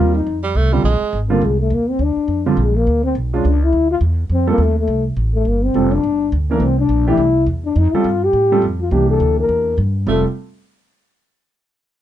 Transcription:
0.00 0.25 D#2 medium
0.00 0.13 G3 medium
0.00 0.13 C4 medium
0.00 0.13 F4 loud
0.00 0.13 F4 medium
0.00 0.13 A#4 medium
0.15 0.42 D#4 medium
0.27 0.55 F2 medium
0.43 0.58 G3 medium
0.55 0.83 C2 medium
0.55 0.74 A3 loud
0.72 0.83 D3 medium
0.72 0.84 G3 medium
0.72 0.83 G3 medium
0.72 0.83 C4 medium
0.72 0.83 F4 medium
0.84 1.00 A#1 medium
0.84 1.19 G#3 medium
1.01 muted upright bass stroke soft
1.13 1.41 G#1 medium
1.30 1.41 D3 medium
1.30 1.41 G3 medium
1.30 1.46 A#3 medium
1.30 1.41 C4 medium
1.30 1.41 F4 medium
1.41 1.70 C2 medium
1.41 1.59 G#3 medium
1.60 1.76 A3 medium
1.70 1.98 D#2 medium
1.70 1.91 A#3 medium
1.90 2.03 C4 medium
1.99 2.15 D2 medium
1.99 2.47 D4 medium
2.16 muted upright bass stroke soft
2.28 2.56 F2 medium
2.46 2.56 D3 medium
2.46 2.56 G3 medium
2.46 2.56 C4 medium
2.46 2.56 F4 medium
2.57 2.85 A#1 medium
2.61 2.77 G#3 medium
2.76 3.03 A#3 medium
2.87 3.14 D2 medium
3.04 3.14 C4 medium
3.15 3.43 B1 medium
3.33 3.43 G#3 medium
3.33 3.43 C#4 medium
3.33 3.43 D4 medium
3.33 3.43 F4 medium
3.45 3.72 C#2 medium
3.45 3.65 D4 medium
3.63 3.90 E4 medium
3.73 4.00 D2 medium
3.91 3.98 F4 medium
4.01 4.29 E2 medium
4.29 4.57 F2 medium
4.29 4.48 C4 medium
4.47 4.58 G3 medium
4.47 4.63 A#3 medium
4.47 4.58 C4 medium
4.47 4.58 F4 medium
4.47 4.58 A4 medium
4.58 4.86 D#2 medium
4.58 4.77 A3 medium
4.79 5.05 A3 medium
4.88 5.16 C2 medium
5.17 5.44 A1 medium
5.34 5.49 A3 medium
5.45 5.73 G1 medium
5.45 5.67 A#3 medium
5.65 5.95 C4 medium
5.74 6.02 F1 medium
5.74 5.90 G3 medium
5.74 5.91 C4 medium
5.74 5.91 F4 medium
5.74 5.90 A4 medium
5.93 6.33 D4 medium
6.04 6.32 G1 medium
6.32 6.59 D2 medium
6.51 6.61 E3 medium
6.51 6.61 A3 medium
6.51 6.64 A#3 medium
6.51 6.61 D4 medium
6.51 6.61 A#4 medium
6.60 6.88 C2 medium
6.60 6.78 C4 medium
6.79 7.05 D4 medium
6.89 7.17 A#1 medium
7.07 7.18 E3 medium
7.07 7.18 A3 medium
7.07 7.18 D4 medium
7.07 7.46 E4 loud
7.07 7.18 G4 medium
7.17 7.46 C2 medium
7.46 7.75 E2 medium
7.65 7.79 D4 medium
7.76 7.92 F2 medium
7.76 7.96 D#4 medium
7.93 8.05 G3 medium
7.93 8.05 C4 medium
7.93 8.26 F4 medium
7.93 8.05 F4 medium
7.93 8.05 A4 medium
7.93 muted upright bass stroke soft
8.04 8.33 G2 medium
8.24 8.64 G4 loud
8.33 8.61 A2 medium
8.52 8.62 G3 medium
8.52 8.63 C4 medium
8.52 8.62 F4 medium
8.52 8.63 A4 medium
8.62 8.91 F2 medium
8.81 8.95 F4 medium
8.91 9.19 C2 medium
8.91 9.71 E3 medium
8.91 9.72 A#3 medium
8.91 9.72 D4 medium
8.91 9.72 G4 medium
8.91 9.09 G4 medium
9.10 9.37 A4 medium
9.20 9.48 D2 medium
9.40 9.77 A#4 medium
9.49 9.77 E2 medium
9.78 10.06 G2 medium
10.07 10.23 F1 medium
10.07 10.23 G3 medium
10.07 10.24 A3 medium
10.07 10.23 C4 medium
10.07 10.23 F4 medium
10.07 10.23 A4 medium
10.07 10.25 A4 medium

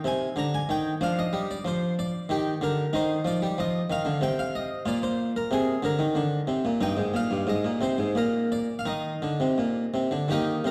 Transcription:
0.00 0.97 D#4 soft
0.04 0.28 C3 medium
0.04 0.33 G#5 loud
0.36 0.59 D3 medium
0.36 0.53 A#5 loud
0.54 0.69 G#5 medium
0.69 0.92 D#3 medium
0.69 0.97 G5 loud
1.01 1.24 F3 medium
1.01 2.25 D4 soft
1.01 1.18 F5 loud
1.19 1.45 D#5 loud
1.33 1.56 G3 medium
1.51 1.66 D5 medium
1.65 2.11 F3 medium
1.65 1.93 C5 loud
1.99 2.30 D5 loud
2.29 2.52 D#3 medium
2.29 2.57 G4 medium
2.61 2.84 D3 medium
2.61 2.89 A#4 loud
2.93 3.16 D#3 medium
2.93 4.17 D#4 medium
2.93 3.21 C5 loud
3.25 3.40 F3 medium
3.25 3.58 D5 loud
3.42 3.57 G3 medium
3.58 3.81 F3 medium
3.58 3.90 D#5 loud
3.90 4.04 D#3 medium
3.90 4.22 F5 loud
4.05 4.20 D3 medium
4.21 4.68 C3 medium
4.21 4.38 G5 loud
4.39 4.54 F5 loud
4.55 4.82 D#5 loud
4.86 5.32 A#2 medium
4.86 6.77 F4 medium
4.86 5.03 D5 loud
5.03 5.30 C5 loud
5.36 5.51 A#4 medium
5.51 5.74 C3 medium
5.51 5.79 G#4 medium
5.83 5.98 D3 medium
5.83 6.17 A#4 loud
5.99 6.15 D#3 medium
6.15 6.39 D3 medium
6.47 6.63 C3 medium
6.65 6.80 A#2 medium
6.81 6.96 G2 medium
6.81 7.43 D#4 soft
6.81 7.15 G5 loud
6.97 7.13 G#2 medium
7.14 7.29 A#2 medium
7.14 7.43 F5 loud
7.31 7.46 G2 medium
7.47 7.63 G#2 medium
7.47 7.77 D#5 loud
7.64 7.80 A#2 medium
7.81 7.97 C3 medium
7.81 8.16 C5 loud
7.98 8.15 G#2 medium
8.15 8.66 A#2 medium
8.15 8.51 A#4 medium
8.52 8.75 D5 medium
8.79 8.86 F5 medium
8.85 9.12 D#3 medium
8.85 10.31 D#4 soft
8.85 10.66 D#5 medium
9.22 9.39 D3 medium
9.40 9.57 C3 medium
9.58 9.84 A#2 medium
9.94 10.10 C3 medium
10.11 10.28 D3 medium
10.28 10.54 D#3 medium
10.28 10.64 A#3 medium
10.28 10.64 D#4 medium
10.28 10.60 G4 medium
10.64 10.71 C3 medium
10.64 10.71 A#4 medium

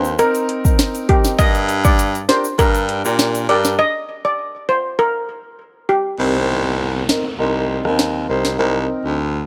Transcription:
0.00 0.16 D#2 loud
0.04 shaker medium
0.18 0.61 C4 loud
0.18 0.61 D#4 medium
0.18 0.62 A#4 loud
0.18 0.61 A#4 loud
0.18 closed hi-hat medium
0.18 shaker medium
0.35 closed hi-hat medium
0.35 shaker medium
0.49 closed hi-hat medium
0.65 1.05 C4 medium
0.65 1.06 D#4 medium
0.65 1.06 A#4 medium
0.65 kick medium
0.65 shaker medium
0.79 snare loud
0.79 closed hi-hat medium
0.79 shaker medium
0.95 closed hi-hat medium
0.95 shaker medium
1.09 1.36 C4 medium
1.09 1.37 D#4 medium
1.09 1.21 G4 medium
1.09 1.37 A#4 medium
1.09 kick loud
1.09 closed hi-hat medium
1.24 snare medium
1.24 shaker medium
1.38 2.25 G2 loud
1.38 1.94 D4 medium
1.38 1.94 G4 medium
1.38 1.94 A#4 loud
1.38 1.51 D#5 loud
1.38 kick loud
1.38 closed hi-hat medium
1.38 shaker medium
1.55 closed hi-hat medium
1.55 shaker soft
1.69 closed hi-hat medium
1.69 shaker medium
1.85 1.95 D5 medium
1.85 kick loud
1.85 shaker medium
1.99 closed hi-hat medium
1.99 shaker medium
2.15 closed hi-hat medium
2.15 shaker soft
2.28 2.43 D4 medium
2.28 2.43 G4 medium
2.28 2.43 A#4 medium
2.28 2.41 C5 medium
2.28 snare loud
2.28 closed hi-hat medium
2.44 shaker medium
2.58 3.00 G2 loud
2.58 3.01 D4 loud
2.58 3.01 G4 medium
2.58 3.02 A#4 loud
2.58 3.01 A#4 loud
2.58 kick medium
2.58 closed hi-hat medium
2.58 shaker medium
2.74 closed hi-hat medium
2.74 shaker medium
2.89 closed hi-hat medium
3.04 3.44 A#2 loud
3.04 3.45 D4 medium
3.04 3.45 G4 medium
3.04 3.46 A#4 medium
3.04 shaker medium
3.19 snare loud
3.19 closed hi-hat medium
3.19 shaker medium
3.35 closed hi-hat medium
3.35 shaker medium
3.49 3.76 G2 loud
3.49 3.76 D4 medium
3.49 3.77 G4 medium
3.49 3.77 A#4 medium
3.49 3.61 D5 medium
3.49 closed hi-hat medium
3.65 snare medium
3.65 shaker medium
3.79 3.91 D#5 loud
4.25 4.36 D5 medium
4.69 4.81 C5 medium
4.99 5.42 A#4 loud
5.89 6.01 G4 medium
6.19 7.05 C2 loud
6.19 6.74 C4 medium
6.19 6.74 D#4 medium
6.19 6.75 A#4 medium
6.19 downlifter medium
7.09 7.23 C4 medium
7.09 7.23 D#4 medium
7.09 7.23 A#4 medium
7.09 snare loud
7.39 7.80 C2 medium
7.39 7.81 C4 medium
7.39 7.81 D#4 medium
7.39 7.81 A#4 loud
7.84 8.24 D#2 medium
7.84 8.25 C4 medium
7.84 8.25 D#4 medium
7.84 8.26 A#4 medium
7.84 cross-stick medium
7.99 snare medium
8.28 8.56 C2 medium
8.28 8.56 C4 medium
8.28 8.57 D#4 medium
8.28 8.57 A#4 medium
8.45 snare medium
8.58 8.86 C2 loud
8.58 9.14 C4 medium
8.58 9.14 D#4 medium
8.58 9.14 A#4 medium
9.05 9.44 D2 medium

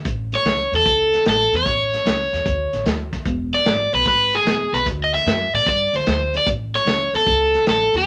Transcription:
0.05 0.34 A1 medium
0.05 kick loud
0.05 closed hi-hat medium
0.32 0.75 C#5 loud
0.32 snare soft
0.32 closed hi-hat medium
0.45 0.65 C#2 medium
0.45 snare medium
0.45 closed hi-hat medium
0.72 0.82 E2 medium
0.72 1.24 A4 loud
0.72 snare soft
0.72 closed hi-hat medium
0.85 1.14 C#2 medium
0.85 kick loud
0.85 closed hi-hat medium
1.13 snare soft
1.13 closed hi-hat medium
1.26 1.45 A1 medium
1.26 1.56 A4 medium
1.26 snare loud
1.26 closed hi-hat medium
1.52 1.62 E2 medium
1.52 snare soft
1.52 closed hi-hat medium
1.57 2.84 C#5 loud
1.66 1.95 A1 medium
1.66 kick loud
1.66 snare soft
1.66 closed hi-hat medium
1.94 snare soft
1.94 closed hi-hat medium
2.06 2.25 C#2 loud
2.06 snare loud
2.06 closed hi-hat medium
2.33 2.42 E2 medium
2.33 snare soft
2.33 closed hi-hat medium
2.46 2.65 D2 medium
2.46 kick loud
2.46 closed hi-hat medium
2.73 2.82 A1 medium
2.73 snare soft
2.73 closed hi-hat medium
2.86 3.14 D2 medium
2.86 snare loud
2.86 closed hi-hat medium
3.13 kick medium
3.13 snare soft
3.13 closed hi-hat medium
3.25 3.54 E1 medium
3.25 kick loud
3.25 closed hi-hat medium
3.53 3.94 D5 medium
3.53 snare soft
3.53 closed hi-hat medium
3.66 3.85 G#1 medium
3.66 snare loud
3.66 closed hi-hat medium
3.93 4.02 B1 medium
3.93 4.06 B4 loud
3.93 snare soft
3.93 closed hi-hat medium
4.06 4.35 G#1 medium
4.06 4.35 B4 medium
4.06 kick loud
4.06 snare soft
4.06 closed hi-hat medium
4.33 4.75 G#4 medium
4.33 snare soft
4.33 closed hi-hat medium
4.45 4.65 E1 medium
4.45 snare loud
4.45 closed hi-hat medium
4.73 4.86 B1 medium
4.73 4.86 B4 medium
4.73 snare soft
4.73 closed hi-hat medium
4.86 5.15 D2 medium
4.86 kick medium
4.86 snare soft
4.86 closed hi-hat medium
5.04 5.14 D#5 medium
5.14 5.55 E5 loud
5.14 snare soft
5.14 closed hi-hat medium
5.26 5.46 F#2 loud
5.26 snare loud
5.26 closed hi-hat medium
5.54 5.63 A2 medium
5.54 5.68 D5 loud
5.54 snare soft
5.54 closed hi-hat medium
5.66 5.86 G2 medium
5.66 5.96 D5 medium
5.66 kick loud
5.66 snare soft
5.66 closed hi-hat medium
5.93 6.03 D2 medium
5.93 6.36 C5 loud
5.93 snare soft
5.93 closed hi-hat medium
6.06 6.35 D2 medium
6.06 snare loud
6.06 closed hi-hat medium
6.34 6.48 D5 loud
6.34 snare soft
6.34 closed hi-hat medium
6.46 6.75 A1 medium
6.46 kick loud
6.46 closed hi-hat medium
6.74 7.16 C#5 medium
6.74 snare soft
6.74 closed hi-hat medium
6.86 7.06 C#2 medium
6.86 snare loud
6.86 closed hi-hat medium
7.13 7.23 E2 medium
7.13 7.64 A4 loud
7.13 snare soft
7.13 closed hi-hat medium
7.26 7.55 C#2 medium
7.26 kick loud
7.26 closed hi-hat medium
7.54 snare soft
7.54 closed hi-hat medium
7.66 7.86 A1 medium
7.66 snare loud
7.66 closed hi-hat medium
7.71 7.97 A4 medium
7.94 8.03 E2 medium
7.94 8.06 G#4 medium
7.94 snare soft
7.94 closed hi-hat medium

